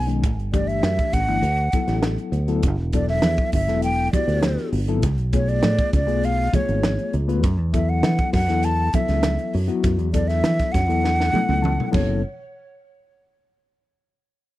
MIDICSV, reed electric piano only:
0, 0, Header, 1, 2, 480
1, 0, Start_track
1, 0, Key_signature, 3, "minor"
1, 0, Tempo, 600601
1, 183, Time_signature, 4, 2, 24, 8
1, 11655, End_track
2, 0, Start_track
2, 0, Title_t, "Reed electric piano"
2, 0, Program_c, 0, 4
2, 55, Note_on_c, 0, 51, 71
2, 56, Note_on_c, 0, 61, 64
2, 58, Note_on_c, 0, 56, 67
2, 59, Note_on_c, 0, 63, 75
2, 179, Note_off_c, 0, 51, 0
2, 179, Note_off_c, 0, 61, 0
2, 180, Note_off_c, 0, 56, 0
2, 180, Note_off_c, 0, 63, 0
2, 421, Note_on_c, 0, 57, 56
2, 423, Note_on_c, 0, 52, 60
2, 425, Note_on_c, 0, 62, 50
2, 429, Note_on_c, 0, 67, 64
2, 946, Note_off_c, 0, 57, 0
2, 947, Note_off_c, 0, 52, 0
2, 948, Note_off_c, 0, 62, 0
2, 950, Note_off_c, 0, 67, 0
2, 1023, Note_on_c, 0, 52, 68
2, 1024, Note_on_c, 0, 57, 63
2, 1028, Note_on_c, 0, 62, 67
2, 1032, Note_on_c, 0, 64, 75
2, 1143, Note_off_c, 0, 52, 0
2, 1143, Note_off_c, 0, 57, 0
2, 1145, Note_off_c, 0, 62, 0
2, 1147, Note_off_c, 0, 64, 0
2, 1384, Note_on_c, 0, 59, 55
2, 1385, Note_on_c, 0, 54, 63
2, 1389, Note_on_c, 0, 64, 55
2, 1395, Note_on_c, 0, 69, 60
2, 1908, Note_off_c, 0, 54, 0
2, 1908, Note_off_c, 0, 59, 0
2, 1910, Note_off_c, 0, 64, 0
2, 1913, Note_off_c, 0, 69, 0
2, 1980, Note_on_c, 0, 54, 88
2, 1982, Note_on_c, 0, 59, 80
2, 1986, Note_on_c, 0, 64, 77
2, 1990, Note_on_c, 0, 69, 90
2, 2101, Note_off_c, 0, 54, 0
2, 2102, Note_off_c, 0, 59, 0
2, 2104, Note_off_c, 0, 64, 0
2, 2106, Note_off_c, 0, 69, 0
2, 2347, Note_on_c, 0, 54, 59
2, 2349, Note_on_c, 0, 59, 52
2, 2352, Note_on_c, 0, 69, 66
2, 2353, Note_on_c, 0, 64, 55
2, 2869, Note_off_c, 0, 54, 0
2, 2870, Note_off_c, 0, 59, 0
2, 2871, Note_off_c, 0, 69, 0
2, 2872, Note_off_c, 0, 64, 0
2, 2940, Note_on_c, 0, 54, 67
2, 2940, Note_on_c, 0, 59, 66
2, 2946, Note_on_c, 0, 64, 65
2, 2948, Note_on_c, 0, 69, 77
2, 3255, Note_off_c, 0, 54, 0
2, 3256, Note_off_c, 0, 59, 0
2, 3259, Note_off_c, 0, 64, 0
2, 3260, Note_off_c, 0, 69, 0
2, 3308, Note_on_c, 0, 66, 61
2, 3313, Note_on_c, 0, 59, 61
2, 3315, Note_on_c, 0, 64, 61
2, 3318, Note_on_c, 0, 67, 62
2, 3829, Note_off_c, 0, 66, 0
2, 3832, Note_off_c, 0, 59, 0
2, 3833, Note_off_c, 0, 64, 0
2, 3834, Note_off_c, 0, 67, 0
2, 3898, Note_on_c, 0, 54, 83
2, 3902, Note_on_c, 0, 59, 79
2, 3904, Note_on_c, 0, 64, 76
2, 3906, Note_on_c, 0, 69, 98
2, 4020, Note_off_c, 0, 54, 0
2, 4022, Note_off_c, 0, 59, 0
2, 4023, Note_off_c, 0, 64, 0
2, 4024, Note_off_c, 0, 69, 0
2, 4256, Note_on_c, 0, 57, 59
2, 4260, Note_on_c, 0, 59, 59
2, 4264, Note_on_c, 0, 65, 54
2, 4265, Note_on_c, 0, 68, 62
2, 4783, Note_off_c, 0, 57, 0
2, 4785, Note_off_c, 0, 59, 0
2, 4787, Note_off_c, 0, 65, 0
2, 4788, Note_off_c, 0, 68, 0
2, 4848, Note_on_c, 0, 57, 71
2, 4851, Note_on_c, 0, 65, 60
2, 4853, Note_on_c, 0, 59, 67
2, 4855, Note_on_c, 0, 68, 81
2, 5169, Note_off_c, 0, 57, 0
2, 5171, Note_off_c, 0, 65, 0
2, 5172, Note_off_c, 0, 59, 0
2, 5173, Note_off_c, 0, 68, 0
2, 5217, Note_on_c, 0, 57, 61
2, 5217, Note_on_c, 0, 59, 57
2, 5223, Note_on_c, 0, 65, 55
2, 5225, Note_on_c, 0, 68, 66
2, 5743, Note_off_c, 0, 59, 0
2, 5744, Note_off_c, 0, 57, 0
2, 5746, Note_off_c, 0, 65, 0
2, 5747, Note_off_c, 0, 68, 0
2, 5815, Note_on_c, 0, 57, 88
2, 5821, Note_on_c, 0, 59, 82
2, 5823, Note_on_c, 0, 71, 90
2, 5824, Note_on_c, 0, 65, 81
2, 5938, Note_off_c, 0, 57, 0
2, 5941, Note_off_c, 0, 59, 0
2, 5942, Note_off_c, 0, 71, 0
2, 5943, Note_off_c, 0, 65, 0
2, 6179, Note_on_c, 0, 54, 60
2, 6186, Note_on_c, 0, 59, 55
2, 6186, Note_on_c, 0, 69, 61
2, 6187, Note_on_c, 0, 64, 57
2, 6705, Note_off_c, 0, 54, 0
2, 6708, Note_off_c, 0, 59, 0
2, 6708, Note_off_c, 0, 64, 0
2, 6708, Note_off_c, 0, 69, 0
2, 6782, Note_on_c, 0, 54, 69
2, 6786, Note_on_c, 0, 64, 64
2, 6788, Note_on_c, 0, 59, 66
2, 6794, Note_on_c, 0, 69, 80
2, 7096, Note_off_c, 0, 54, 0
2, 7098, Note_off_c, 0, 64, 0
2, 7099, Note_off_c, 0, 59, 0
2, 7102, Note_off_c, 0, 69, 0
2, 7144, Note_on_c, 0, 59, 57
2, 7145, Note_on_c, 0, 54, 64
2, 7149, Note_on_c, 0, 64, 54
2, 7152, Note_on_c, 0, 69, 71
2, 7667, Note_off_c, 0, 59, 0
2, 7668, Note_off_c, 0, 54, 0
2, 7669, Note_off_c, 0, 64, 0
2, 7671, Note_off_c, 0, 69, 0
2, 7733, Note_on_c, 0, 54, 84
2, 7734, Note_on_c, 0, 59, 83
2, 7737, Note_on_c, 0, 64, 74
2, 7737, Note_on_c, 0, 66, 101
2, 8052, Note_off_c, 0, 54, 0
2, 8052, Note_off_c, 0, 59, 0
2, 8053, Note_off_c, 0, 66, 0
2, 8054, Note_off_c, 0, 64, 0
2, 8098, Note_on_c, 0, 54, 64
2, 8100, Note_on_c, 0, 59, 54
2, 8107, Note_on_c, 0, 64, 55
2, 8107, Note_on_c, 0, 69, 66
2, 8624, Note_off_c, 0, 54, 0
2, 8625, Note_off_c, 0, 59, 0
2, 8628, Note_off_c, 0, 64, 0
2, 8628, Note_off_c, 0, 69, 0
2, 8697, Note_on_c, 0, 54, 70
2, 8701, Note_on_c, 0, 59, 70
2, 8702, Note_on_c, 0, 64, 65
2, 8705, Note_on_c, 0, 69, 81
2, 9013, Note_off_c, 0, 54, 0
2, 9016, Note_off_c, 0, 59, 0
2, 9016, Note_off_c, 0, 64, 0
2, 9018, Note_off_c, 0, 69, 0
2, 9050, Note_on_c, 0, 54, 60
2, 9053, Note_on_c, 0, 59, 56
2, 9057, Note_on_c, 0, 64, 56
2, 9060, Note_on_c, 0, 69, 71
2, 9290, Note_on_c, 0, 81, 67
2, 9408, Note_off_c, 0, 81, 0
2, 9419, Note_on_c, 0, 78, 62
2, 9513, Note_off_c, 0, 59, 0
2, 9514, Note_off_c, 0, 54, 0
2, 9515, Note_off_c, 0, 64, 0
2, 9518, Note_off_c, 0, 69, 0
2, 9523, Note_on_c, 0, 59, 62
2, 9524, Note_on_c, 0, 54, 65
2, 9524, Note_on_c, 0, 64, 60
2, 9528, Note_on_c, 0, 69, 78
2, 9532, Note_off_c, 0, 78, 0
2, 9755, Note_off_c, 0, 59, 0
2, 9756, Note_off_c, 0, 54, 0
2, 9756, Note_off_c, 0, 64, 0
2, 9758, Note_off_c, 0, 69, 0
2, 11655, End_track
0, 0, End_of_file